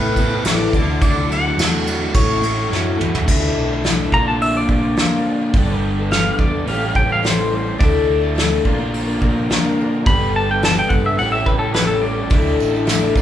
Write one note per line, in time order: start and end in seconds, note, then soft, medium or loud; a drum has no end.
0.00 0.17 A2 medium
0.00 0.38 A2 loud
0.00 0.17 E3 medium
0.00 0.17 B3 medium
0.00 0.18 E4 medium
0.00 0.73 E4 medium
0.00 0.19 A4 medium
0.00 0.72 A4 medium
0.00 0.46 B4 medium
0.00 0.73 B4 medium
0.16 0.32 E3 medium
0.16 0.32 B3 medium
0.16 0.32 E4 medium
0.16 kick medium
0.16 ride medium
0.20 0.31 A4 medium
0.32 0.46 B3 soft
0.32 0.46 E4 soft
0.32 0.46 A4 medium
0.44 0.69 A1 loud
0.44 0.73 A2 medium
0.44 0.74 E3 medium
0.44 0.74 B3 medium
0.44 0.74 E4 medium
0.44 0.74 A4 medium
0.44 1.01 D5 medium
0.44 snare loud
0.44 ride loud
0.73 0.98 D2 loud
0.73 1.00 D3 medium
0.73 1.02 F#3 medium
0.73 1.03 A3 medium
0.73 1.03 D4 medium
0.73 2.14 E4 medium
0.73 2.13 F#4 medium
0.73 2.13 D5 medium
0.73 kick medium
0.73 ride medium
0.79 1.03 E4 medium
1.01 1.51 D2 medium
1.01 1.16 D3 medium
1.01 1.16 F#3 medium
1.01 1.17 A3 medium
1.01 1.15 D4 medium
1.01 1.13 E4 medium
1.01 1.31 D5 loud
1.01 kick loud
1.01 ride medium
1.14 1.29 A3 soft
1.14 1.30 D4 soft
1.14 1.29 E4 medium
1.30 1.44 F#3 medium
1.30 1.44 A3 medium
1.30 1.43 D4 medium
1.30 1.42 E4 medium
1.30 2.18 F#5 loud
1.30 ride medium
1.43 1.58 A3 medium
1.43 1.58 D4 medium
1.43 1.58 E4 medium
1.57 2.07 E2 loud
1.57 1.86 D3 medium
1.57 1.85 F#3 medium
1.57 1.86 A3 medium
1.57 1.86 D4 medium
1.57 1.87 E4 medium
1.57 snare loud
1.57 ride medium
1.86 2.00 F#3 medium
1.86 2.01 A3 medium
1.86 2.01 D4 medium
1.86 1.99 E4 medium
1.86 ride medium
2.01 2.14 A3 soft
2.01 2.15 D4 soft
2.01 2.15 E4 soft
2.14 2.65 A1 loud
2.14 2.43 A2 medium
2.14 2.41 F#3 medium
2.14 2.43 A3 medium
2.14 2.43 C#4 medium
2.14 2.44 E4 medium
2.14 3.27 F#4 medium
2.14 3.26 A4 medium
2.14 3.27 C#5 medium
2.14 2.95 C#5 medium
2.14 kick loud
2.14 ride medium
2.42 2.57 F#3 medium
2.42 2.57 A3 medium
2.42 2.56 C#4 medium
2.42 2.55 E4 medium
2.42 ride medium
2.56 2.72 A3 soft
2.56 2.71 C#4 soft
2.56 2.71 E4 medium
2.72 2.97 F#2 medium
2.72 3.00 A2 medium
2.72 2.98 F#3 medium
2.72 2.99 A3 medium
2.72 2.99 C#4 medium
2.72 3.01 E4 medium
2.72 snare medium
2.99 3.25 E2 medium
2.99 3.27 F#3 medium
2.99 3.28 A3 medium
2.99 3.28 C#4 medium
2.99 3.29 E4 medium
2.99 mid tom medium
3.15 floor tom medium
3.27 3.52 D2 medium
3.27 3.70 D3 medium
3.27 3.71 A3 medium
3.27 3.71 D4 medium
3.27 4.12 E4 medium
3.27 3.69 E4 medium
3.27 4.11 A4 medium
3.27 4.12 D5 medium
3.27 kick loud
3.27 crash loud
3.56 4.06 B1 medium
3.71 3.85 A3 soft
3.71 3.85 D4 medium
3.71 3.84 E4 medium
3.84 4.13 D3 medium
3.84 4.13 A3 medium
3.84 4.14 D4 medium
3.84 4.14 E4 medium
3.84 snare loud
3.84 open hi-hat medium
4.11 4.62 A#1 medium
4.11 5.52 A#2 medium
4.11 5.52 D3 medium
4.11 4.27 F3 medium
4.11 4.28 A#3 medium
4.11 5.53 D4 medium
4.11 4.27 D4 medium
4.11 5.53 F4 medium
4.11 5.52 A#4 medium
4.11 4.27 A#5 medium
4.11 kick medium
4.16 4.27 F4 medium
4.28 4.57 A#3 soft
4.28 4.56 D4 soft
4.28 4.56 F4 soft
4.28 4.41 A5 medium
4.41 4.55 E5 medium
4.41 open hi-hat medium
4.57 4.69 A#3 soft
4.57 4.70 D4 soft
4.57 4.70 F4 soft
4.57 4.70 D5 medium
4.69 4.94 A#1 medium
4.69 4.97 F3 medium
4.69 4.98 A#3 medium
4.69 4.98 D4 medium
4.69 4.99 F4 medium
4.69 5.81 D5 medium
4.69 kick medium
4.96 5.27 A#2 medium
4.96 5.27 F3 medium
4.96 5.27 A#3 medium
4.96 5.27 D4 medium
4.96 snare loud
4.96 open hi-hat medium
5.00 5.27 F4 medium
5.28 5.41 F3 medium
5.28 5.41 A#3 medium
5.28 5.41 D4 medium
5.28 5.40 F4 medium
5.41 5.56 A#3 soft
5.41 5.55 D4 medium
5.41 5.55 F4 medium
5.54 6.29 G1 medium
5.54 6.66 G2 medium
5.54 6.65 D3 medium
5.54 5.98 G3 medium
5.54 6.68 B3 medium
5.54 5.98 B3 medium
5.54 6.67 G4 medium
5.54 6.67 A4 medium
5.54 kick loud
5.54 open hi-hat medium
5.59 5.99 D4 medium
5.59 5.98 A4 medium
5.99 6.10 B3 soft
5.99 6.11 D4 medium
5.99 6.12 A4 medium
6.11 6.38 G3 medium
6.11 6.39 B3 medium
6.11 6.40 D4 medium
6.11 6.40 A4 medium
6.11 6.39 F5 medium
6.11 snare loud
6.11 open hi-hat medium
6.38 6.64 E2 medium
6.38 6.53 G3 medium
6.38 6.54 B3 medium
6.38 6.54 D4 medium
6.38 6.52 A4 medium
6.38 6.67 D5 medium
6.38 kick medium
6.53 6.69 B3 soft
6.53 6.68 D4 soft
6.53 6.67 A4 medium
6.66 6.92 A1 loud
6.66 7.78 A2 medium
6.66 6.83 E3 medium
6.66 7.79 C#4 medium
6.66 7.80 G4 medium
6.66 7.78 A4 medium
6.66 6.95 F5 medium
6.66 open hi-hat medium
6.70 6.83 A2 medium
6.70 6.83 G3 medium
6.70 6.83 C#4 medium
6.70 7.80 G4 medium
6.70 6.82 A4 medium
6.84 6.97 C#4 soft
6.84 6.97 A4 soft
6.95 7.70 A1 medium
6.95 7.22 E3 medium
6.95 7.24 G3 medium
6.95 7.24 C#4 medium
6.95 7.25 A4 medium
6.95 7.10 G5 medium
6.95 kick medium
7.12 7.25 F5 medium
7.23 7.52 A2 medium
7.23 7.50 E3 medium
7.23 7.52 G3 medium
7.23 7.52 C#4 medium
7.23 7.53 A4 medium
7.23 7.79 C5 medium
7.23 snare loud
7.23 open hi-hat medium
7.51 7.66 E3 medium
7.51 7.65 G3 medium
7.51 7.64 C#4 medium
7.51 7.63 A4 medium
7.64 7.79 G3 soft
7.64 7.79 C#4 soft
7.64 7.79 A4 medium
7.78 8.06 D2 medium
7.78 8.22 D3 medium
7.78 8.23 A3 medium
7.78 8.64 D4 medium
7.78 8.22 E4 medium
7.78 8.64 E4 medium
7.78 8.64 A4 medium
7.78 8.20 A4 medium
7.78 9.46 D5 loud
7.78 kick loud
7.78 open hi-hat medium
7.82 8.65 D4 medium
7.82 8.65 E4 loud
8.09 8.59 D2 medium
8.21 8.35 A3 soft
8.21 8.34 E4 medium
8.21 8.35 A4 medium
8.35 8.62 D3 medium
8.35 8.64 A3 medium
8.35 8.65 E4 medium
8.35 8.65 A4 medium
8.35 snare loud
8.35 open hi-hat medium
8.63 9.15 A#1 medium
8.63 10.05 A#2 medium
8.63 10.06 D3 medium
8.63 8.78 F3 medium
8.63 8.79 A#3 medium
8.63 8.78 D4 medium
8.63 10.06 D4 medium
8.63 10.05 F4 medium
8.63 10.05 A#4 medium
8.63 8.77 A#4 medium
8.63 kick medium
8.69 10.07 F4 loud
8.78 9.07 F3 soft
8.78 9.06 A#3 soft
8.78 9.05 D4 medium
8.78 9.05 A#4 medium
8.94 open hi-hat medium
9.07 9.20 F3 soft
9.07 9.21 A#3 soft
9.07 9.21 D4 medium
9.07 9.21 A#4 medium
9.21 9.47 A#1 loud
9.21 9.50 F3 medium
9.21 9.50 A#3 medium
9.21 9.50 D4 medium
9.21 9.51 A#4 medium
9.21 kick medium
9.50 9.79 A#2 medium
9.50 9.79 D3 medium
9.50 9.78 F3 loud
9.50 9.79 A#3 medium
9.50 9.80 D4 loud
9.50 9.80 A#4 loud
9.50 snare loud
9.50 open hi-hat medium
9.79 9.93 F3 medium
9.79 9.94 A#3 medium
9.79 9.94 D4 medium
9.79 9.93 A#4 medium
9.95 10.07 F3 soft
9.95 10.08 A#3 soft
9.95 10.08 D4 soft
9.95 10.08 A#4 medium
10.04 10.81 G1 medium
10.04 11.18 G2 medium
10.04 11.17 D3 medium
10.04 10.49 G3 medium
10.04 11.17 B3 medium
10.04 11.18 G4 medium
10.04 11.17 A4 medium
10.04 10.34 B5 loud
10.04 kick loud
10.04 open hi-hat medium
10.09 10.50 B3 medium
10.09 10.49 D4 medium
10.09 11.19 G4 loud
10.09 10.48 A4 medium
10.36 10.49 A5 medium
10.49 10.63 B3 soft
10.49 10.64 D4 soft
10.49 10.63 A4 medium
10.49 10.64 G5 medium
10.62 10.88 G3 medium
10.62 10.90 B3 medium
10.62 10.90 D4 medium
10.62 10.91 A4 medium
10.62 10.78 A5 medium
10.62 snare loud
10.62 open hi-hat medium
10.79 10.92 G5 medium
10.89 11.16 G2 medium
10.89 11.04 G3 medium
10.89 11.05 B3 medium
10.89 11.05 D4 medium
10.89 11.04 A4 medium
10.89 11.04 F#5 medium
10.89 kick medium
11.05 11.20 B3 soft
11.05 11.20 D4 soft
11.05 11.19 A4 soft
11.05 11.18 E5 medium
11.18 11.44 A1 loud
11.18 11.33 A2 medium
11.18 11.34 E3 medium
11.18 11.34 G3 medium
11.18 11.33 C#4 medium
11.18 12.31 C#4 medium
11.18 12.32 G4 medium
11.18 12.31 G4 medium
11.18 11.31 A4 medium
11.18 11.32 F#5 medium
11.18 open hi-hat medium
11.22 12.31 A4 medium
11.32 11.46 G3 soft
11.32 11.47 C#4 soft
11.32 11.47 A4 soft
11.32 11.46 E5 medium
11.46 12.21 A1 medium
11.46 11.73 E3 medium
11.46 11.74 G3 medium
11.46 11.74 C#4 medium
11.46 11.75 A4 medium
11.46 11.58 B4 medium
11.46 kick medium
11.59 11.74 A4 loud
11.73 12.03 A2 medium
11.73 12.01 E3 medium
11.73 12.02 G3 medium
11.73 12.04 C#4 medium
11.73 12.04 A4 medium
11.73 11.86 B4 medium
11.73 snare loud
11.73 open hi-hat medium
11.87 12.02 A4 medium
12.01 12.17 E3 medium
12.01 12.17 G3 medium
12.01 12.15 C#4 medium
12.01 13.22 D5 medium
12.06 12.15 A4 medium
12.16 12.31 G3 soft
12.16 12.31 C#4 medium
12.16 12.31 A4 soft
12.29 12.56 D2 medium
12.29 12.73 D3 medium
12.29 12.74 A3 medium
12.29 13.12 D4 medium
12.29 13.15 D4 medium
12.29 12.73 E4 medium
12.29 13.16 E4 medium
12.29 12.72 A4 medium
12.29 13.15 A4 medium
12.29 kick loud
12.29 open hi-hat medium
12.47 tambourine soft
12.60 13.10 A1 loud
12.60 tambourine medium
12.73 12.86 A3 medium
12.73 12.86 E4 medium
12.73 12.88 A4 medium
12.73 tambourine soft
12.86 13.14 D3 medium
12.86 13.15 A3 medium
12.86 13.15 E4 loud
12.86 13.16 A4 loud
12.86 snare loud
12.86 open hi-hat medium
12.86 tambourine loud
13.03 tambourine soft
13.13 13.22 A#1 medium
13.13 13.22 A#2 medium
13.13 13.22 F3 medium
13.13 13.22 A#3 medium
13.13 13.22 D4 medium
13.13 13.22 F4 medium
13.13 13.22 A#4 medium
13.13 kick medium
13.17 tambourine medium